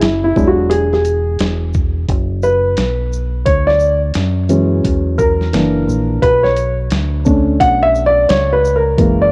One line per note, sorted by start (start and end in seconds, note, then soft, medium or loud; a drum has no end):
0.01 0.35 F#1 medium
0.01 0.23 E4 medium
0.01 snare loud
0.01 closed hi-hat medium
0.24 0.48 E4 medium
0.36 1.36 E1 loud
0.36 0.85 F#3 medium
0.36 0.86 G#3 medium
0.36 0.86 D4 medium
0.36 kick loud
0.36 shaker medium
0.47 0.71 F#4 medium
0.70 0.92 G#4 medium
0.70 closed hi-hat loud
0.93 1.59 G#4 medium
0.93 snare soft
1.05 closed hi-hat soft
1.05 shaker soft
1.39 2.05 E1 loud
1.39 snare loud
1.39 closed hi-hat medium
1.73 kick loud
1.73 shaker medium
2.09 2.74 F#1 loud
2.09 kick loud
2.09 closed hi-hat medium
2.43 3.50 B4 loud
2.43 shaker medium
2.77 3.43 B1 medium
2.77 snare loud
2.77 closed hi-hat medium
3.13 shaker medium
3.46 4.12 D2 loud
3.46 3.66 C#5 medium
3.46 kick loud
3.46 closed hi-hat medium
3.67 4.00 D5 medium
3.67 snare soft
3.79 shaker medium
4.14 4.81 F#2 medium
4.14 snare loud
4.14 closed hi-hat medium
4.49 5.49 E3 medium
4.49 5.49 F#3 soft
4.49 5.50 G#3 medium
4.49 5.50 C#4 medium
4.49 closed hi-hat medium
4.49 shaker medium
4.84 5.50 E2 medium
4.84 kick loud
4.84 closed hi-hat loud
5.18 6.25 A#4 medium
5.18 kick medium
5.18 shaker medium
5.41 snare soft
5.53 5.86 F#1 medium
5.53 6.19 E3 medium
5.53 6.19 A#3 soft
5.53 6.19 D4 medium
5.53 snare loud
5.53 closed hi-hat medium
5.88 6.21 A#1 medium
5.88 shaker medium
6.22 6.88 B1 loud
6.22 6.44 B4 loud
6.22 kick loud
6.22 closed hi-hat medium
6.43 6.76 C#5 medium
6.43 snare soft
6.56 closed hi-hat soft
6.56 shaker soft
6.90 7.57 D2 medium
6.90 snare loud
6.90 closed hi-hat medium
7.25 8.94 A3 soft
7.25 8.95 C#4 medium
7.25 8.94 D4 medium
7.25 kick loud
7.25 shaker medium
7.60 8.26 B1 medium
7.60 7.84 F#5 loud
7.60 kick loud
7.60 closed hi-hat loud
7.83 8.07 E5 loud
7.95 shaker medium
8.06 8.30 D5 loud
8.29 8.95 C#2 medium
8.29 8.53 C#5 medium
8.29 snare loud
8.29 closed hi-hat medium
8.53 8.76 B4 loud
8.65 shaker medium
8.76 9.19 A#4 medium
8.98 9.32 F#1 loud
8.98 9.32 E3 medium
8.98 9.32 G#3 soft
8.98 9.32 A#3 medium
8.98 kick loud
8.98 closed hi-hat loud
9.22 9.32 D5 medium